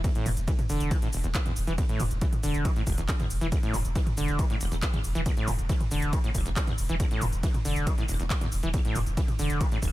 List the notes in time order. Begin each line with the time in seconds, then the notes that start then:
0.04 E2, kick, closed hi-hat, ride, shaker
0.15 A2, closed hi-hat, shaker
0.26 E1 B2, mid tom, open hi-hat, shaker
0.37 E1, closed hi-hat, shaker
0.48 E3, kick, closed hi-hat, ride, shaker
0.59 closed hi-hat, mid tom, shaker
0.69 E1 D3, open hi-hat, shaker
0.80 E1, closed hi-hat, shaker
0.91 E3, kick, closed hi-hat, ride, shaker
1.02 A2, closed hi-hat, shaker
1.13 E1, open hi-hat, shaker
1.24 E1 E2, closed hi-hat, shaker
1.35 kick, clap, closed hi-hat, ride, shaker
1.46 E2, closed hi-hat, mid tom, shaker
1.56 E1, open hi-hat, shaker
1.67 E1 E3, closed hi-hat, shaker
1.78 E2, kick, closed hi-hat, ride, shaker
1.89 A2, closed hi-hat, shaker
2.00 E1 B2, mid tom, open hi-hat, shaker
2.11 E1, closed hi-hat, shaker
2.21 E3, kick, closed hi-hat, ride, shaker
2.33 closed hi-hat, mid tom, shaker
2.43 E1 D3, open hi-hat, shaker
2.54 E1, closed hi-hat, shaker
2.65 E3, kick, closed hi-hat, ride, shaker
2.76 A2, closed hi-hat, shaker
2.87 E1, kick, open hi-hat, shaker
2.98 E1 E2, closed hi-hat, shaker
3.09 kick, clap, closed hi-hat, ride, shaker
3.20 E2, closed hi-hat, mid tom, shaker
3.30 E1, open hi-hat, shaker
3.41 E1 E3, closed hi-hat, shaker
3.52 E2, kick, closed hi-hat, ride, shaker
3.63 A2, closed hi-hat, shaker
3.74 E1 B2, mid tom, open hi-hat, shaker
3.85 E1, closed hi-hat, shaker
3.95 E3, kick, closed hi-hat, ride, shaker
4.07 closed hi-hat, mid tom, shaker
4.17 E1 D3, open hi-hat, shaker
4.28 E1, closed hi-hat, shaker
4.39 E3, kick, closed hi-hat, ride, shaker
4.50 A2, closed hi-hat, shaker
4.61 E1, open hi-hat, shaker
4.72 E1 E2, closed hi-hat, shaker
4.82 kick, clap, closed hi-hat, ride, shaker
4.93 E2, closed hi-hat, mid tom, shaker
5.04 E1, open hi-hat, shaker
5.15 E1 E3, closed hi-hat, shaker
5.26 E2, kick, closed hi-hat, ride, shaker
5.37 A2, closed hi-hat, shaker
5.48 E1 B2, mid tom, open hi-hat, shaker
5.59 E1, closed hi-hat, shaker
5.69 E3, kick, closed hi-hat, ride, shaker
5.80 closed hi-hat, mid tom, shaker
5.91 E1 D3, open hi-hat, shaker
6.02 E1, closed hi-hat, shaker
6.13 E3, kick, closed hi-hat, ride, shaker
6.24 A2, closed hi-hat, shaker
6.35 E1, kick, open hi-hat, shaker
6.46 E1 E2, closed hi-hat, shaker
6.56 kick, clap, closed hi-hat, ride, shaker
6.67 E2, closed hi-hat, mid tom, shaker
6.78 E1, open hi-hat, shaker
6.89 E1 E3, closed hi-hat, shaker
7.00 E2, kick, closed hi-hat, ride, shaker
7.11 A2, closed hi-hat, shaker
7.22 E1 B2, mid tom, open hi-hat, shaker
7.33 E1, closed hi-hat, shaker
7.43 E3, kick, closed hi-hat, ride, shaker
7.54 closed hi-hat, mid tom, shaker
7.65 E1 D3, open hi-hat, shaker
7.76 E1, closed hi-hat, shaker
7.87 E3, kick, closed hi-hat, ride, shaker
7.98 A2, closed hi-hat, shaker
8.09 E1, open hi-hat, shaker
8.20 E1 E2, closed hi-hat, shaker
8.30 kick, clap, closed hi-hat, ride, shaker
8.41 E2, closed hi-hat, mid tom, shaker
8.52 E1, open hi-hat, shaker
8.63 E1 E3, closed hi-hat, shaker
8.74 E2, kick, closed hi-hat, ride, shaker
8.85 A2, closed hi-hat, shaker
8.95 E1 B2, mid tom, open hi-hat, shaker
9.06 E1, closed hi-hat, shaker
9.17 E3, kick, closed hi-hat, ride, shaker
9.28 closed hi-hat, mid tom, shaker
9.39 E1 D3, open hi-hat, shaker
9.50 E1, closed hi-hat, shaker
9.61 E3, kick, closed hi-hat, ride, shaker
9.72 A2, closed hi-hat, shaker
9.82 E1, kick, open hi-hat, shaker